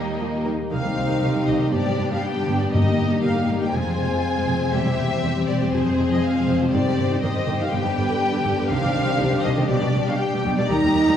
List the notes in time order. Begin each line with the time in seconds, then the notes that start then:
Already playing: D#2 D#3 G3 A#3 D#4 G4 A#4 D#5 G5 A#5
0.10 D#5
0.20 F3 A#4
0.36 G4
0.46 D#3 D#4
0.61 A#3
0.71 C2 C3 D#3 G3 C4 D#4 G4 F5
0.84 C2 D#3
0.91 C5
0.96 C2 D#3
1.07 C2 D#3 G4
1.22 C2 D#3 C5
1.34 C2 D#3
1.42 G3
1.47 C2 D#3 D#5
1.57 C2 D#3 C5
1.72 G1 G2 G3 B3 D4 D5
1.84 G2 G3
1.92 B4
1.98 G1 G2 G3
2.08 G2 G3 G4
2.13 F5
2.23 B4 G5
2.36 G2 G3
2.41 D3
2.48 G1 G2 G3
2.58 G3 B4 D5
2.62 G2
2.72 G1 G2 G3 A#3 D#5
2.76 A#3 D#4
2.85 G2 G3
2.91 A#4
2.98 G1 G2 G3
3.08 G2 G3 G4
3.22 G1 G2 G3 A#4 F5
3.35 G2 G3
3.42 G3
3.48 G1 G2 G3
3.58 G3 A#4 G5
3.62 G2
3.73 F1 F2 G#3 C4 F4 C5 G#5
3.86 F2 G#3
3.91 C5
3.98 F1 F2 G#3
4.08 F2 G#3 G#4
4.25 C5
4.36 F2 G#3
4.41 C3
4.48 F1 F2 G#3
4.57 G#3 C5
4.61 F2
4.72 E1 E2 G3 G4 E5
4.85 E2 G3
4.91 C5
4.98 E1 E2 G3
5.07 E2 G3 G4
5.23 E1 E2 G3 C5
5.36 E2 G3
5.40 E3
5.48 E1 E2 G3 D5
5.56 C5
5.61 E2 G3
5.71 F1 F2 F3 G#3 G#4 C5
5.85 F2 F3
5.90 C5
5.98 F1 F2 F3
6.06 G#4
6.11 F2 F3 D#5
6.25 F5
6.36 F2 C3 F3
6.47 F1 F2 F3
6.56 C5
6.61 F2 F3 C5
6.72 G1 G2 D#3 G3 G4 D5
6.86 G2 D#3 C5
6.98 G1 G2 D#3
7.07 G2 D#3 G4
7.22 G1 G2 D#3 C5 D#5
7.33 G2 D#3
7.39 G3
7.46 G1 G2 D#3
7.56 G2 C5
7.60 D#3 F5
7.69 G1 G2 D3 B3 D4 B4 G5
7.83 G2 D3
7.89 D5
7.96 G1 G2 D3
8.06 G2 D3 G4
8.23 D5
8.33 G2 D3
8.39 D3
8.44 G1 G2 D3
8.56 D3 D5
8.60 G2
8.69 C2 C3 D#3 D4 C5 F5
8.80 C3 D#3
8.88 D5
8.94 C2 C3 D#3
9.06 C3 D#3 G4
9.18 C2 C3 D#3 D5
9.31 C3 D#3
9.38 C4
9.43 C2 C3 D#3 D#5
9.54 D#3 D5
9.58 C3
9.68 B1 B2 G3 G4 D5
9.81 B2 G3
9.87 D5
9.94 B1 B2 G3
10.03 B2 G3 G4 F5
10.19 D5 G5
10.32 B2 G3
10.37 B3
10.44 B1 B2 G3
10.53 D5
10.57 B2 G3 D5
10.69 D#2 D#3 G3 D#4 G4 A#4 A#5
10.83 D#2 G3 D#5
10.94 D#2 G3
11.03 D#2 G4
11.07 G3